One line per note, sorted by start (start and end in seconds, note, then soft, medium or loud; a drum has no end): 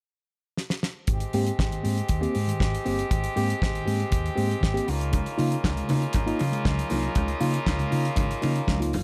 0.57 snare medium
0.70 snare medium
0.83 snare medium
1.07 1.24 G#1 medium
1.07 1.21 G#2 medium
1.07 1.21 D#3 medium
1.07 4.85 G#3 medium
1.07 4.85 C4 medium
1.07 4.85 G4 medium
1.07 kick medium
1.07 closed hi-hat medium
1.20 closed hi-hat soft
1.33 1.49 G#2 medium
1.33 1.47 A#3 medium
1.33 1.44 C4 medium
1.33 1.44 G4 medium
1.33 open hi-hat medium
1.45 1.51 C4 soft
1.45 1.51 G4 soft
1.45 closed hi-hat soft
1.59 1.75 G#1 loud
1.59 kick medium
1.59 snare loud
1.71 1.84 G#2 medium
1.71 1.84 D#3 medium
1.71 closed hi-hat soft
1.83 2.00 G#2 medium
1.83 1.97 A#3 medium
1.83 1.97 C4 medium
1.83 1.97 G4 medium
1.83 open hi-hat medium
1.98 closed hi-hat soft
2.09 2.26 D#2 medium
2.09 kick loud
2.09 closed hi-hat medium
2.21 2.35 A#3 medium
2.21 2.35 C4 medium
2.21 2.35 G4 medium
2.21 closed hi-hat soft
2.35 2.51 G#2 medium
2.35 open hi-hat medium
2.47 2.59 G#2 soft
2.47 2.59 D#3 medium
2.47 closed hi-hat soft
2.60 2.77 G#1 medium
2.60 2.73 G#2 soft
2.60 2.73 D#3 soft
2.60 kick loud
2.60 snare medium
2.75 closed hi-hat soft
2.85 3.02 G1 medium
2.85 2.99 A#3 medium
2.85 2.97 C4 medium
2.85 2.97 G4 medium
2.85 open hi-hat medium
2.98 3.03 C4 soft
2.98 3.03 G4 soft
2.98 closed hi-hat soft
3.11 3.27 G#1 loud
3.11 3.24 G#2 medium
3.11 3.24 D#3 medium
3.11 kick loud
3.11 closed hi-hat medium
3.24 closed hi-hat soft
3.36 3.52 G#2 medium
3.36 3.49 A#3 medium
3.36 3.47 C4 medium
3.36 3.47 G4 medium
3.36 open hi-hat medium
3.49 3.54 C4 soft
3.49 3.54 G4 soft
3.49 closed hi-hat soft
3.61 3.78 G#1 loud
3.61 3.66 C4 soft
3.61 3.67 G4 soft
3.61 kick medium
3.61 snare loud
3.73 3.87 G#2 medium
3.73 3.87 D#3 medium
3.73 closed hi-hat soft
3.85 4.03 G#2 medium
3.85 3.99 A#3 medium
3.85 3.99 C4 medium
3.85 4.00 G4 medium
3.85 open hi-hat medium
4.00 closed hi-hat soft
4.11 4.28 D#2 medium
4.11 4.25 G#2 medium
4.11 4.25 D#3 medium
4.11 kick loud
4.11 closed hi-hat medium
4.26 closed hi-hat soft
4.35 4.53 G#2 loud
4.35 4.50 A#3 medium
4.35 4.47 C4 medium
4.35 4.47 G4 medium
4.35 open hi-hat medium
4.48 4.54 C4 soft
4.48 4.54 G4 soft
4.48 closed hi-hat soft
4.61 4.79 G#1 medium
4.61 4.75 G#2 medium
4.61 4.75 D#3 medium
4.61 kick loud
4.61 snare loud
4.73 4.88 A#3 medium
4.73 4.88 C4 medium
4.73 4.88 G4 medium
4.73 closed hi-hat medium
4.87 5.20 C#2 loud
4.87 9.03 C#3 medium
4.87 9.03 A#3 medium
4.87 4.93 D#4 soft
4.87 9.03 D#4 medium
4.87 4.93 F4 soft
4.87 9.03 F4 medium
4.87 open hi-hat medium
5.01 closed hi-hat soft
5.12 5.26 C#3 medium
5.12 5.26 G#3 medium
5.12 kick loud
5.12 closed hi-hat medium
5.12 muted conga medium
5.26 closed hi-hat soft
5.38 5.55 C#3 medium
5.38 5.51 A#3 medium
5.38 5.49 D#4 medium
5.38 5.49 F4 medium
5.38 open hi-hat medium
5.38 muted conga soft
5.50 5.56 D#4 soft
5.50 5.56 F4 soft
5.50 closed hi-hat soft
5.63 5.80 C#2 loud
5.63 5.69 D#4 soft
5.63 5.69 F4 soft
5.63 kick loud
5.63 snare loud
5.63 high conga medium
5.77 5.90 C#3 medium
5.77 5.90 G#3 medium
5.77 closed hi-hat soft
5.89 6.05 C#3 loud
5.89 6.02 A#3 medium
5.89 6.03 D#4 medium
5.89 6.03 F4 medium
5.89 open hi-hat medium
5.89 low conga medium
6.02 closed hi-hat soft
6.13 6.31 G#1 medium
6.13 kick loud
6.13 closed hi-hat medium
6.13 muted conga medium
6.26 6.40 A#3 medium
6.26 6.41 D#4 medium
6.26 6.40 F4 medium
6.26 closed hi-hat soft
6.39 6.56 C#3 medium
6.39 open hi-hat medium
6.39 muted conga medium
6.53 6.64 C#3 medium
6.53 6.64 G#3 medium
6.53 closed hi-hat soft
6.65 6.82 C#2 medium
6.65 6.79 C#3 medium
6.65 6.79 G#3 medium
6.65 kick loud
6.65 snare medium
6.65 high conga medium
6.79 closed hi-hat soft
6.90 7.07 C2 medium
6.90 7.04 A#3 medium
6.90 7.02 D#4 medium
6.90 7.02 F4 medium
6.90 open hi-hat medium
6.90 high conga medium
7.03 7.09 D#4 soft
7.03 7.09 F4 soft
7.03 closed hi-hat soft
7.15 7.32 C#2 loud
7.15 7.29 C#3 medium
7.15 7.29 G#3 medium
7.15 kick loud
7.15 closed hi-hat medium
7.15 muted conga medium
7.28 closed hi-hat soft
7.40 7.57 C#3 medium
7.40 7.54 A#3 medium
7.40 7.52 D#4 medium
7.40 7.53 F4 loud
7.40 open hi-hat medium
7.40 muted conga soft
7.54 7.59 D#4 soft
7.54 7.59 F4 soft
7.54 closed hi-hat soft
7.67 7.83 C#2 loud
7.67 kick loud
7.67 snare loud
7.67 high conga medium
7.79 7.93 C#3 medium
7.79 7.93 G#3 medium
7.79 closed hi-hat soft
7.91 8.08 C#3 loud
7.91 8.05 A#3 medium
7.91 8.05 D#4 medium
7.91 8.05 F4 medium
7.91 open hi-hat medium
8.05 closed hi-hat soft
8.16 8.33 G#1 medium
8.16 8.30 C#3 medium
8.16 8.30 G#3 medium
8.16 kick loud
8.16 closed hi-hat medium
8.16 muted conga medium
8.31 closed hi-hat soft
8.42 8.59 C#3 loud
8.42 8.56 A#3 medium
8.42 8.53 D#4 medium
8.42 8.54 F4 medium
8.42 open hi-hat medium
8.42 muted conga soft
8.55 8.60 D#4 soft
8.55 8.60 F4 soft
8.55 closed hi-hat soft
8.67 8.95 C#2 medium
8.67 8.81 C#3 medium
8.67 8.81 G#3 medium
8.67 kick loud
8.67 snare loud
8.67 high conga medium
8.79 8.93 A#3 medium
8.79 8.92 D#4 medium
8.79 8.92 F4 medium
8.79 closed hi-hat medium
8.93 9.04 G1 medium
8.93 8.98 D#4 soft
8.93 8.99 F4 soft
8.93 open hi-hat medium
8.93 high conga medium